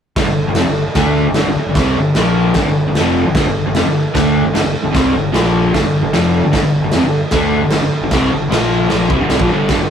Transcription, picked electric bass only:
0.16 G1
0.26 G1
0.46 G1
0.56 F1
0.67 G1
0.95 D2
1.26 G1
1.35 G1
1.45 G1
1.56 muted picked electric bass stroke
1.66 G1
1.75 C2
1.95 G1
2.17 A#1
2.55 G1
2.66 G1
2.87 G1
2.95 F1
3.26 G1
3.35 G1
3.46 G1
3.65 G1
3.75 F1
3.85 G1
4.15 D2
4.43 G1
4.54 G1
4.64 G1
4.76 muted picked electric bass stroke
4.85 G1
4.95 C2
5.15 G1
5.35 A#1
5.75 G1
5.83 G1
6.03 G1
6.13 F1
6.43 G1
6.54 G1
6.63 G1
6.81 G1
6.92 F1
7.02 G1
7.32 D2
7.61 G1
7.71 G1
7.82 G1
7.91 muted picked electric bass stroke
8.01 G1
8.12 C2
8.30 G1
8.49 A#1
8.91 A#1
9.10 C2
9.21 G1
9.30 C2
9.39 A#1
9.50 G1
9.69 G1
9.78 G1

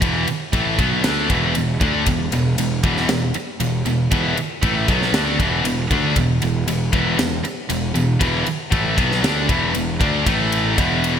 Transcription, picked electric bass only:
0.02 E1
0.28 muted picked electric bass stroke
0.53 A1
0.79 B1
1.05 D2
1.30 E1
1.56 E1
1.81 D2
2.07 E1
2.32 E1
2.58 E1
2.84 E1
3.09 E1
3.35 muted picked electric bass stroke
3.61 E1
3.86 E1
4.12 E1
4.37 muted picked electric bass stroke
4.63 A1
4.88 B1
5.13 D2
5.40 E1
5.64 E1
5.91 D2
6.17 E1
6.43 E1
6.67 E1
6.93 E1
7.19 E1
7.44 muted picked electric bass stroke
7.70 E1
7.95 E1
8.21 E1
8.46 muted picked electric bass stroke
8.72 A1
8.98 B1
9.23 D2
9.49 E1
9.76 E1
10.01 D2
10.27 A1
10.78 E1

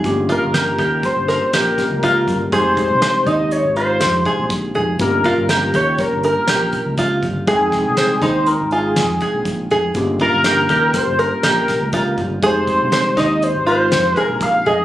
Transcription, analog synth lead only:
0.32 A#4
0.57 A#4
1.05 C5
1.55 A#4
2.03 A#4
2.52 C5
3.26 D#5
3.52 C#5
3.76 C5
5.01 A#4
5.76 C#5
6.00 A#4
6.25 A#4
7.48 G#4
8.22 C5
8.47 A#4
8.72 G#4
10.21 A#4
10.95 C5
11.19 A#4
12.46 C5
13.19 D#5
13.43 C5
13.67 C5
14.19 A#4
14.42 F5
14.67 D#5

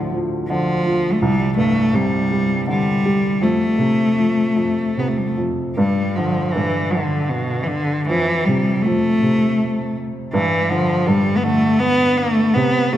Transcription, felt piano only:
Already playing: D2 A2 D3
0.13 F3
0.50 D3
0.86 F3
1.22 C2
1.57 G2
1.93 C3
2.31 G3
2.67 D3
3.05 G3
3.42 F2
3.78 C3
4.18 F3
4.56 F2
4.97 C3
5.38 F2
5.77 G2
6.17 D3
6.56 G2
6.94 D3
8.09 F2
8.48 C3
8.86 F2
9.22 C3
10.34 G2
10.70 D3
11.07 G2
11.44 D3
12.56 C3
12.92 G3

